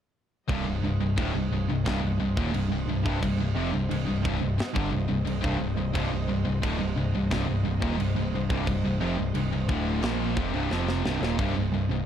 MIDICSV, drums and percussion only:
0, 0, Header, 1, 2, 480
1, 0, Start_track
1, 0, Key_signature, -3, "minor"
1, 0, Tempo, 680272
1, 354, Time_signature, 4, 2, 24, 8
1, 8507, End_track
2, 0, Start_track
2, 0, Title_t, "Drums"
2, 347, Note_on_c, 9, 49, 66
2, 348, Note_on_c, 9, 36, 116
2, 418, Note_off_c, 9, 49, 0
2, 419, Note_off_c, 9, 36, 0
2, 830, Note_on_c, 9, 49, 70
2, 831, Note_on_c, 9, 36, 119
2, 900, Note_off_c, 9, 49, 0
2, 901, Note_off_c, 9, 36, 0
2, 1313, Note_on_c, 9, 36, 96
2, 1314, Note_on_c, 9, 49, 59
2, 1323, Note_on_c, 9, 38, 100
2, 1384, Note_off_c, 9, 36, 0
2, 1385, Note_off_c, 9, 49, 0
2, 1393, Note_off_c, 9, 38, 0
2, 1674, Note_on_c, 9, 36, 108
2, 1744, Note_off_c, 9, 36, 0
2, 1793, Note_on_c, 9, 49, 61
2, 1864, Note_off_c, 9, 49, 0
2, 2157, Note_on_c, 9, 36, 100
2, 2228, Note_off_c, 9, 36, 0
2, 2277, Note_on_c, 9, 36, 101
2, 2284, Note_on_c, 9, 49, 73
2, 2347, Note_off_c, 9, 36, 0
2, 2355, Note_off_c, 9, 49, 0
2, 2760, Note_on_c, 9, 49, 69
2, 2830, Note_off_c, 9, 49, 0
2, 2999, Note_on_c, 9, 36, 114
2, 3070, Note_off_c, 9, 36, 0
2, 3240, Note_on_c, 9, 49, 55
2, 3248, Note_on_c, 9, 38, 98
2, 3310, Note_off_c, 9, 49, 0
2, 3319, Note_off_c, 9, 38, 0
2, 3359, Note_on_c, 9, 36, 112
2, 3429, Note_off_c, 9, 36, 0
2, 3719, Note_on_c, 9, 49, 57
2, 3790, Note_off_c, 9, 49, 0
2, 3839, Note_on_c, 9, 36, 106
2, 3909, Note_off_c, 9, 36, 0
2, 4200, Note_on_c, 9, 36, 114
2, 4203, Note_on_c, 9, 49, 69
2, 4270, Note_off_c, 9, 36, 0
2, 4274, Note_off_c, 9, 49, 0
2, 4681, Note_on_c, 9, 36, 120
2, 4684, Note_on_c, 9, 49, 68
2, 4751, Note_off_c, 9, 36, 0
2, 4755, Note_off_c, 9, 49, 0
2, 5159, Note_on_c, 9, 49, 56
2, 5160, Note_on_c, 9, 36, 103
2, 5168, Note_on_c, 9, 38, 101
2, 5230, Note_off_c, 9, 36, 0
2, 5230, Note_off_c, 9, 49, 0
2, 5238, Note_off_c, 9, 38, 0
2, 5519, Note_on_c, 9, 36, 108
2, 5590, Note_off_c, 9, 36, 0
2, 5643, Note_on_c, 9, 49, 61
2, 5714, Note_off_c, 9, 49, 0
2, 5999, Note_on_c, 9, 36, 102
2, 6069, Note_off_c, 9, 36, 0
2, 6119, Note_on_c, 9, 36, 101
2, 6121, Note_on_c, 9, 49, 71
2, 6190, Note_off_c, 9, 36, 0
2, 6191, Note_off_c, 9, 49, 0
2, 6595, Note_on_c, 9, 49, 66
2, 6666, Note_off_c, 9, 49, 0
2, 6838, Note_on_c, 9, 36, 123
2, 6908, Note_off_c, 9, 36, 0
2, 7074, Note_on_c, 9, 49, 57
2, 7083, Note_on_c, 9, 38, 103
2, 7145, Note_off_c, 9, 49, 0
2, 7153, Note_off_c, 9, 38, 0
2, 7316, Note_on_c, 9, 36, 100
2, 7386, Note_off_c, 9, 36, 0
2, 7559, Note_on_c, 9, 38, 64
2, 7630, Note_off_c, 9, 38, 0
2, 7680, Note_on_c, 9, 38, 70
2, 7751, Note_off_c, 9, 38, 0
2, 7801, Note_on_c, 9, 38, 95
2, 7871, Note_off_c, 9, 38, 0
2, 7924, Note_on_c, 9, 38, 91
2, 7995, Note_off_c, 9, 38, 0
2, 8036, Note_on_c, 9, 36, 115
2, 8038, Note_on_c, 9, 49, 61
2, 8106, Note_off_c, 9, 36, 0
2, 8109, Note_off_c, 9, 49, 0
2, 8507, End_track
0, 0, End_of_file